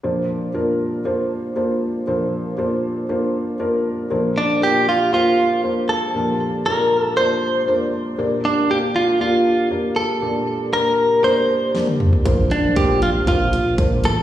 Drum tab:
HH |----------------|----------------|----------------|----------------|
SD |----------------|----------------|----------------|----------------|
T1 |----------------|----------------|----------------|----------------|
T2 |----------------|----------------|----------------|----------------|
FT |----------------|----------------|----------------|----------------|
BD |----------------|----------------|----------------|----------------|

HH |----------------|----------------|x-x-x-x-x-x-x-x-|
SD |----------------|------------o---|----------------|
T1 |----------------|-------------o--|----------------|
T2 |----------------|--------------o-|----------------|
FT |----------------|---------------o|----------------|
BD |----------------|----------------|o---o---o---o---|